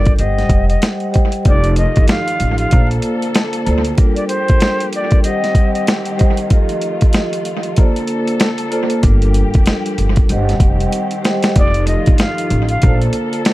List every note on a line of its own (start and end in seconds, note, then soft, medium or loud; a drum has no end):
0.00 0.11 G1 medium
0.00 0.19 G3 medium
0.00 0.21 D4 medium
0.00 0.21 F4 medium
0.00 0.21 A4 medium
0.00 0.21 A#4 medium
0.00 0.16 D5 medium
0.05 kick medium
0.05 closed hi-hat soft
0.18 0.43 G1 loud
0.18 0.98 G3 medium
0.18 0.98 G4 medium
0.18 0.99 C5 medium
0.18 0.66 D#5 medium
0.18 0.99 D#5 medium
0.18 0.28 F#5 medium
0.18 closed hi-hat medium
0.28 1.02 G5 medium
0.38 snare soft
0.38 closed hi-hat soft
0.49 0.74 F1 loud
0.49 kick loud
0.49 closed hi-hat medium
0.69 0.81 D#5 medium
0.69 closed hi-hat medium
0.82 snare loud
0.82 closed hi-hat loud
1.00 closed hi-hat soft
1.12 1.39 G3 medium
1.12 1.40 G4 medium
1.12 1.40 C5 medium
1.12 1.40 D#5 medium
1.12 1.40 G5 medium
1.12 closed hi-hat medium
1.16 kick medium
1.32 closed hi-hat medium
1.45 1.84 F1 loud
1.45 2.70 D#3 medium
1.45 2.49 F3 medium
1.45 2.70 A3 medium
1.45 2.50 D#4 medium
1.45 2.70 F4 medium
1.45 2.49 F4 medium
1.45 2.50 G4 medium
1.45 2.50 A4 medium
1.45 1.75 D5 loud
1.45 kick loud
1.45 closed hi-hat medium
1.64 closed hi-hat medium
1.76 2.06 D#5 medium
1.76 closed hi-hat medium
1.96 2.06 G1 medium
1.96 kick medium
1.96 closed hi-hat medium
2.08 2.56 F5 medium
2.08 snare loud
2.08 closed hi-hat medium
2.28 closed hi-hat medium
2.40 2.64 A1 loud
2.40 closed hi-hat medium
2.58 2.87 F5 medium
2.58 closed hi-hat soft
2.71 2.96 A#1 loud
2.71 3.97 D3 medium
2.71 3.96 A#3 medium
2.71 3.51 A#3 medium
2.71 3.51 F4 medium
2.71 3.97 A4 medium
2.71 3.52 A4 medium
2.71 3.52 C5 medium
2.71 3.52 D5 medium
2.71 kick medium
2.71 closed hi-hat medium
2.91 closed hi-hat medium
3.02 closed hi-hat medium
3.22 closed hi-hat medium
3.35 snare loud
3.35 closed hi-hat loud
3.53 closed hi-hat medium
3.66 3.91 D2 medium
3.66 3.93 A#3 medium
3.66 3.93 F4 medium
3.66 3.93 A4 medium
3.66 3.94 C5 medium
3.66 3.94 D5 medium
3.66 closed hi-hat medium
3.85 closed hi-hat medium
3.97 5.23 F3 medium
3.97 5.01 G3 medium
3.97 5.23 A#3 medium
3.97 5.01 D4 medium
3.97 5.02 F4 medium
3.97 5.23 G4 medium
3.97 5.02 A4 medium
3.97 5.02 A#4 medium
3.97 kick loud
3.97 closed hi-hat medium
4.16 4.27 D5 medium
4.16 closed hi-hat medium
4.28 4.88 C5 loud
4.28 closed hi-hat medium
4.48 kick medium
4.48 closed hi-hat medium
4.60 snare loud
4.60 closed hi-hat medium
4.80 closed hi-hat medium
4.93 5.23 D5 medium
4.93 closed hi-hat medium
5.11 kick medium
5.11 closed hi-hat soft
5.24 7.74 D#3 medium
5.24 6.03 G3 medium
5.24 6.49 C4 medium
5.24 6.49 G4 medium
5.24 6.04 G4 medium
5.24 6.04 C5 medium
5.24 5.71 D#5 medium
5.24 6.04 D#5 medium
5.24 5.33 F#5 medium
5.24 closed hi-hat medium
5.33 6.08 G5 medium
5.44 snare soft
5.44 closed hi-hat medium
5.55 kick loud
5.55 closed hi-hat medium
5.74 5.86 D#5 medium
5.74 closed hi-hat medium
5.87 snare loud
5.87 closed hi-hat loud
6.05 closed hi-hat medium
6.17 6.44 G3 medium
6.17 6.45 G4 medium
6.17 6.45 C5 medium
6.17 6.45 D#5 medium
6.17 6.46 G5 medium
6.17 closed hi-hat medium
6.21 kick medium
6.37 closed hi-hat medium
6.50 7.54 F3 medium
6.50 7.76 A3 medium
6.50 7.76 F4 medium
6.50 7.55 F4 medium
6.50 7.55 G4 medium
6.50 7.55 A4 medium
6.50 7.55 D#5 medium
6.50 kick loud
6.50 closed hi-hat medium
6.69 closed hi-hat medium
6.82 closed hi-hat medium
7.01 kick medium
7.01 closed hi-hat medium
7.13 snare loud
7.13 closed hi-hat medium
7.33 closed hi-hat medium
7.45 closed hi-hat medium
7.63 closed hi-hat soft
7.76 9.02 D3 medium
7.76 10.27 A#3 medium
7.76 8.56 A#3 medium
7.76 8.57 F4 medium
7.76 9.02 A4 medium
7.76 8.57 A4 medium
7.76 8.57 C5 medium
7.76 8.57 D5 medium
7.76 kick medium
7.76 closed hi-hat medium
7.96 closed hi-hat medium
8.07 closed hi-hat medium
8.28 closed hi-hat medium
8.40 snare loud
8.40 closed hi-hat loud
8.58 closed hi-hat medium
8.70 8.98 A#3 medium
8.70 8.98 F4 medium
8.70 8.98 A4 medium
8.70 8.99 C5 medium
8.70 8.99 D5 medium
8.70 closed hi-hat medium
8.90 closed hi-hat medium
9.02 9.42 G1 loud
9.02 10.28 F3 medium
9.02 10.06 G3 medium
9.02 10.06 D4 medium
9.02 10.07 F4 medium
9.02 10.28 G4 medium
9.02 10.07 A4 medium
9.02 10.07 A#4 medium
9.02 kick loud
9.02 closed hi-hat medium
9.22 closed hi-hat medium
9.34 closed hi-hat medium
9.54 9.64 F1 medium
9.54 kick medium
9.54 closed hi-hat medium
9.66 snare loud
9.66 closed hi-hat medium
9.86 closed hi-hat medium
9.98 10.22 G1 medium
9.98 closed hi-hat medium
10.16 kick medium
10.16 closed hi-hat soft
10.29 10.54 G1 loud
10.29 11.54 D#3 medium
10.29 11.09 G3 medium
10.29 11.55 C4 medium
10.29 11.55 G4 medium
10.29 11.09 G4 medium
10.29 11.09 C5 medium
10.29 11.09 D#5 medium
10.29 10.38 F#5 medium
10.29 closed hi-hat medium
10.38 11.13 G5 medium
10.49 snare soft
10.49 closed hi-hat medium
10.60 10.84 F1 loud
10.60 kick loud
10.60 closed hi-hat medium
10.80 closed hi-hat medium
10.92 closed hi-hat loud
11.11 closed hi-hat medium
11.22 11.50 G3 medium
11.22 11.50 G4 medium
11.22 11.50 C5 medium
11.22 11.51 D#5 medium
11.22 11.51 G5 medium
11.22 snare loud
11.22 closed hi-hat medium
11.43 snare loud
11.43 closed hi-hat medium
11.55 11.94 F1 loud
11.55 12.81 D#3 medium
11.55 12.60 F3 medium
11.55 12.81 A3 medium
11.55 12.61 D#4 medium
11.55 12.81 F4 medium
11.55 12.60 F4 medium
11.55 12.60 G4 medium
11.55 12.60 A4 medium
11.55 11.86 D5 loud
11.55 kick loud
11.55 closed hi-hat loud
11.74 closed hi-hat medium
11.87 12.16 D#5 medium
11.87 closed hi-hat medium
12.06 12.17 G1 medium
12.06 kick medium
12.06 closed hi-hat medium
12.18 12.67 F5 medium
12.18 snare loud
12.18 closed hi-hat medium
12.38 closed hi-hat medium
12.50 12.75 A1 medium
12.50 closed hi-hat medium
12.69 12.98 F5 medium
12.69 closed hi-hat soft
12.82 13.07 A#1 loud
12.82 13.53 D3 medium
12.82 13.53 A#3 medium
12.82 13.53 F4 medium
12.82 13.53 A4 medium
12.82 13.53 C5 medium
12.82 13.53 D5 medium
12.82 kick medium
12.82 closed hi-hat medium
13.02 closed hi-hat soft
13.13 closed hi-hat medium
13.33 closed hi-hat medium
13.45 snare loud
13.45 closed hi-hat loud